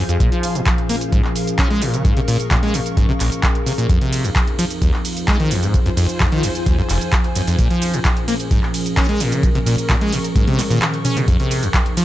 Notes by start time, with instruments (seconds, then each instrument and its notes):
Already playing: ambient pad F2 F3 D#4 F4 G#4 C5 F5 G#5
0.09 acid bass F2, closed hi-hat, cabasa
0.20 ambient pad A#2 C#4 A#4, acid bass A#2, kick, closed hi-hat, cabasa
0.32 acid bass F3, closed hi-hat
0.43 open hi-hat, cabasa
0.55 acid bass A#2, closed hi-hat, cabasa
0.66 kick, clap, closed hi-hat, cabasa
0.76 ambient pad C#6, closed hi-hat
0.89 acid bass A#3, open hi-hat, cabasa
1.01 closed hi-hat, cabasa
1.12 acid bass G#2, kick, closed hi-hat, cabasa
1.25 clap
1.36 open hi-hat, cabasa
1.47 closed hi-hat, cabasa
1.59 acid bass C#4, kick, clap, closed hi-hat, cabasa
1.70 acid bass G#3, closed hi-hat
1.82 acid bass A#2, open hi-hat, cabasa
1.94 acid bass C#3, closed hi-hat, cabasa
2.05 acid bass G#2, kick, closed hi-hat, cabasa
2.17 acid bass C3, closed hi-hat
2.28 acid bass A#2, open hi-hat, cabasa
2.40 closed hi-hat, cabasa
2.51 acid bass A#2, kick, clap, closed hi-hat, cabasa
2.63 acid bass G#3, closed hi-hat
2.74 acid bass A#2, open hi-hat, cabasa
2.86 closed hi-hat, cabasa
2.97 acid bass G#2, kick, closed hi-hat, cabasa
3.09 acid bass C3
3.20 acid bass A#1, clap, open hi-hat, cabasa
3.32 closed hi-hat, cabasa
3.43 kick, clap, closed hi-hat, cabasa
3.55 closed hi-hat
3.66 acid bass C3, open hi-hat, cabasa
3.78 acid bass A#2, closed hi-hat, cabasa
3.89 acid bass F2, ambient pad F2 F3 D#4 F4, kick, closed hi-hat, cabasa
4.01 acid bass C3, closed hi-hat
4.13 ambient pad C5, open hi-hat, ride, cabasa
4.24 acid bass F2, closed hi-hat, cabasa
4.36 kick, clap, closed hi-hat, cabasa
4.47 closed hi-hat
4.59 acid bass F3, open hi-hat, ride, cabasa
4.71 closed hi-hat, cabasa
4.75 ambient pad G#5
4.82 acid bass D#2, kick, closed hi-hat, cabasa
4.94 clap
5.05 open hi-hat, ride, cabasa
5.17 closed hi-hat, cabasa
5.28 acid bass G#3, kick, clap, closed hi-hat, cabasa
5.40 acid bass D#3, closed hi-hat
5.51 acid bass F2, open hi-hat, ride, cabasa
5.63 acid bass G#2, closed hi-hat, cabasa
5.74 acid bass F2, kick, closed hi-hat, cabasa
5.86 acid bass F#2, closed hi-hat
5.97 acid bass F2, open hi-hat, ride, cabasa
6.09 closed hi-hat, cabasa
6.20 acid bass F2, kick, clap, closed hi-hat, cabasa
6.32 acid bass D#3, closed hi-hat
6.43 acid bass F2, open hi-hat, ride, cabasa
6.55 closed hi-hat, cabasa
6.66 acid bass D#2, kick, closed hi-hat, cabasa
6.78 acid bass F#2
6.89 acid bass F1, clap, open hi-hat, ride, cabasa
7.01 closed hi-hat, cabasa
7.12 kick, clap, closed hi-hat, cabasa
7.24 closed hi-hat
7.36 acid bass F#2, open hi-hat, ride, cabasa
7.47 acid bass F2, closed hi-hat, cabasa
7.59 ambient pad A#2 C#4 G#4 A#4, acid bass A#2, kick, closed hi-hat, cabasa
7.71 acid bass F3, closed hi-hat
7.82 open hi-hat, ride, cabasa
7.94 acid bass A#2, closed hi-hat, cabasa
8.05 kick, clap, closed hi-hat, cabasa
8.17 closed hi-hat
8.28 acid bass A#3, ambient pad C#6, open hi-hat, ride, cabasa
8.40 closed hi-hat, cabasa
8.51 acid bass G#2, kick, closed hi-hat, cabasa
8.63 clap
8.74 open hi-hat, ride, cabasa
8.86 closed hi-hat, cabasa
8.97 acid bass C#4, kick, clap, closed hi-hat, cabasa
9.09 acid bass G#3, closed hi-hat
9.20 acid bass A#2, open hi-hat, ride, cabasa
9.32 acid bass C#3, closed hi-hat, cabasa
9.43 acid bass A#2, kick, closed hi-hat, cabasa
9.55 acid bass C3, closed hi-hat
9.66 acid bass A#2, open hi-hat, ride, cabasa
9.78 closed hi-hat, cabasa
9.89 acid bass A#2, kick, clap, closed hi-hat, cabasa
10.01 acid bass G#3, closed hi-hat
10.13 acid bass A#2, open hi-hat, ride, cabasa
10.24 closed hi-hat, cabasa
10.36 acid bass G#2, kick, closed hi-hat, high tom, cabasa
10.47 acid bass C3, closed hi-hat, high tom
10.59 acid bass A#2, clap, open hi-hat, high tom, ride, cabasa
10.70 acid bass A#2, closed hi-hat, mid tom, cabasa
10.82 clap, closed hi-hat, mid tom, cabasa
10.94 closed hi-hat
11.05 acid bass C#4, mid tom, open hi-hat, ride, cabasa
11.17 acid bass A#2, closed hi-hat, mid tom, cabasa
11.28 acid bass F2, ambient pad F2 D#4 F4, kick, closed hi-hat, cabasa
11.40 acid bass C3, ambient pad G#5, closed hi-hat
11.51 open hi-hat, ride, cabasa
11.58 ambient pad C5 F5
11.63 acid bass F2, closed hi-hat, cabasa
11.74 kick, clap, closed hi-hat, cabasa
11.86 closed hi-hat
11.97 acid bass F3, open hi-hat, ride, cabasa